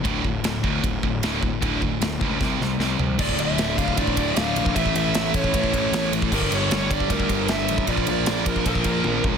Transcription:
<<
  \new Staff \with { instrumentName = "Lead electric guitar" } { \time 4/4 \key d \minor \tempo 4 = 154 r1 | r1 | d''8 e''4 f''8 d''4 f''4 | e''8 e''4 cis''8 cis''4. r8 |
bes'8 cis''4 d''8 bes'4 e''4 | d''8 d''4 bes'8 bes'4. r8 | }
  \new Staff \with { instrumentName = "String section" } { \time 4/4 \key d \minor r1 | r1 | <d' d'' a''>1 | <a e'>1 |
<g d'>1 | <bes f' bes'>1 | }
  \new Staff \with { instrumentName = "Distorted electric guitar" } { \clef bass \time 4/4 \key d \minor <d, a, d>8 <d, a,>8 <d, a,>8 <d, a, d>8 <d, a,>8 <d, a,>8 <d, a, d>8 <d, a,>8 | <d, a, d>8 <d, a,>8 <d, a,>8 <d, a, d>8 <c g c'>8 <c g>8 <c g c'>8 <c g>8 | <d, a, d>2 <d, a, d>2 | <a, e a>2 <a, e a>2 |
<g, d g>2 <g, d g>2 | <bes, f bes>2 <bes, f bes>2 | }
  \new Staff \with { instrumentName = "Distorted electric guitar" } { \clef bass \time 4/4 \key d \minor <d, a, d>8 <d, a,>8 <d, a,>8 <d, a, d>8 <d, a,>8 <d, a,>8 <d, a, d>8 <d, a,>8 | <d, a, d>8 <d, a,>8 <d, a,>8 <d, a, d>8 <c g c'>8 <c g>8 <c g c'>8 <c g>8 | <d, a, d>1 | <a, e a>1 |
<g, d g>1 | <bes, f bes>1 | }
  \new Staff \with { instrumentName = "Picked electric bass" } { \clef bass \time 4/4 \key d \minor d,,8 d,,8 d,,8 d,8 d,,8 d,,8 d,,4 | d,,4 d,,8 cis,8 c,8 c,8 c,8 c,8 | d,,8 d,,8 d,,8 d,,8 a,,8 d,,8 d,,8 bes,,8 | a,,8 a,,8 a,,8 a,,8 a,,8 a,,8 a,,8 a,,8 |
g,,8 g,,8 g,,8 g,,8 d,8 g,,8 g,,8 a,,8 | bes,,8 bes,,8 bes,,8 bes,,8 bes,,8 bes,,8 bes,,8 cis,8 | }
  \new DrumStaff \with { instrumentName = "Drums" } \drummode { \time 4/4 <bd rb>8 bd8 <rb sn>8 bd8 <bd rb>8 bd8 <rb sn>8 bd8 | <bd rb>8 bd8 <rb sn>8 bd8 <bd sn>8 sn8 sn8 tomfh8 | <cymc bd>16 bd16 cymr8 <cymr sn>8 <bd cymr>16 bd16 <bd cymr>16 bd16 <bd cymr>8 <cymr sn>8 cymr16 bd16 | <bd cymr>16 bd16 cymr8 <cymr sn>8 <bd cymr>16 bd16 <bd cymr>16 bd16 <bd cymr>8 <cymr sn>8 cymr16 bd16 |
<cymc bd>16 bd16 cymr8 <cymr sn>8 <bd cymr>16 bd16 <bd cymr>16 bd16 <bd cymr>8 <cymr sn>8 cymr16 bd16 | <bd cymr>16 bd16 cymr8 <cymr sn>8 <bd cymr>16 bd16 <bd cymr>16 bd16 <bd cymr>8 tommh8 bd8 | }
>>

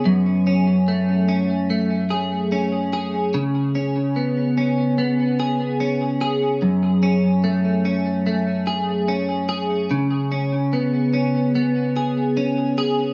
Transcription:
\new Staff \with { instrumentName = "Clean electric guitar" } { \time 4/4 \key fis \minor \tempo 4 = 73 fis,8 cis'8 a8 cis'8 a8 gis'8 cis'8 gis'8 | cis8 cis'8 b8 cis'8 b8 gis'8 cis'8 gis'8 | fis,8 cis'8 a8 cis'8 a8 gis'8 cis'8 gis'8 | cis8 cis'8 b8 cis'8 b8 gis'8 cis'8 gis'8 | }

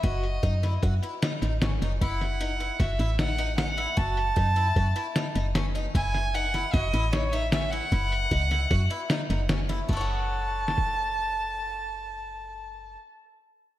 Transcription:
<<
  \new Staff \with { instrumentName = "Violin" } { \time 5/4 \key fis \dorian \tempo 4 = 152 dis''2 r2. | fis''2 e''4 fis''4 fis''4 | a''1 r4 | gis''4 fis''4 dis''4 cis''8 e''8 e''8 fis''8~ |
fis''1 r4 | a''1~ a''4~ | a''1~ a''4 | }
  \new Staff \with { instrumentName = "Twelve-string acoustic guitar" } { \time 5/4 \key fis \dorian fis'4 dis'8 e'8 fis'8 e'8 dis'8 dis'8 cis'8 dis'8 | e'4 dis'8 e'8 fis'8 e'8 dis'8 dis'8 cis'8 e'8 | fis'4 dis'8 e'8 fis'8 e'8 dis'8 dis'8 cis'8 dis'8 | e'4 dis'8 e'8 fis'8 e'8 dis'8 dis'8 cis'8 e'8 |
e'4 dis'8 e'8 fis'8 e'8 dis'8 dis'8 cis'8 e'8 | <fis' a' cis'' fis''>1~ <fis' a' cis'' fis''>4~ | <fis' a' cis'' fis''>1~ <fis' a' cis'' fis''>4 | }
  \new Staff \with { instrumentName = "FM bass" } { \clef bass \time 5/4 \key fis \dorian fis,,4 fis,4 fis,8 r4 a,,8 gis,,8 fis,,8 | fis,,2 fis,,8 a,,2~ a,,8 | fis,,4 fis,4 fis,8 r4 fis,,4. | fis,,2 fis,,8 a,,2~ a,,8 |
fis,,4 cis,4 fis,8 r4 fis,,4. | fis,,1~ fis,,4~ | fis,,1~ fis,,4 | }
  \new DrumStaff \with { instrumentName = "Drums" } \drummode { \time 5/4 <hh bd>8 hh8 <hh bd>8 <hh sn>8 <hh bd>8 hh8 <hh sn>8 <hh sn>8 <hh sn>8 <hh sn>8 | <hh bd>8 <hh sn>8 hh8 hh8 <hh bd sn>8 hh8 <hh sn>8 hh8 <hh sn>8 hh8 | <hh bd>8 hh8 <hh bd>8 hh8 <hh bd>8 hh8 <hh sn>8 hh8 <hh sn>8 hh8 | <hh bd>8 <hh sn>8 hh8 <hh sn>8 <hh bd sn>8 hh8 <hh sn>8 hh8 <hh sn>8 hh8 |
<hh bd>8 hh8 <hh bd>8 <hh sn>8 <hh bd>8 hh8 <hh sn>8 <hh sn>8 <hh sn>8 <hh sn>8 | <cymc bd>4 r4 sn16 bd8. r4 r4 | r4 r4 r4 r4 r4 | }
>>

